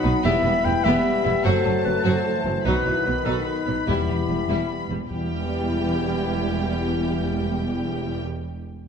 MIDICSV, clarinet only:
0, 0, Header, 1, 2, 480
1, 0, Start_track
1, 0, Key_signature, 1, "minor"
1, 0, Tempo, 404313
1, 296, Time_signature, 6, 3, 24, 8
1, 10544, End_track
2, 0, Start_track
2, 0, Title_t, "Clarinet"
2, 0, Program_c, 0, 71
2, 299, Note_on_c, 0, 76, 90
2, 772, Note_on_c, 0, 79, 84
2, 790, Note_off_c, 0, 76, 0
2, 999, Note_on_c, 0, 76, 94
2, 1017, Note_off_c, 0, 79, 0
2, 1479, Note_off_c, 0, 76, 0
2, 1488, Note_on_c, 0, 76, 77
2, 1711, Note_off_c, 0, 76, 0
2, 1719, Note_on_c, 0, 72, 83
2, 2194, Note_on_c, 0, 71, 74
2, 2212, Note_off_c, 0, 72, 0
2, 2428, Note_off_c, 0, 71, 0
2, 2436, Note_on_c, 0, 72, 79
2, 3149, Note_on_c, 0, 71, 70
2, 3166, Note_off_c, 0, 72, 0
2, 3864, Note_on_c, 0, 69, 65
2, 3882, Note_off_c, 0, 71, 0
2, 4090, Note_off_c, 0, 69, 0
2, 4097, Note_on_c, 0, 71, 56
2, 4580, Note_off_c, 0, 71, 0
2, 4587, Note_on_c, 0, 67, 55
2, 5787, Note_off_c, 0, 67, 0
2, 6059, Note_on_c, 0, 64, 58
2, 9754, Note_off_c, 0, 64, 0
2, 10544, End_track
0, 0, End_of_file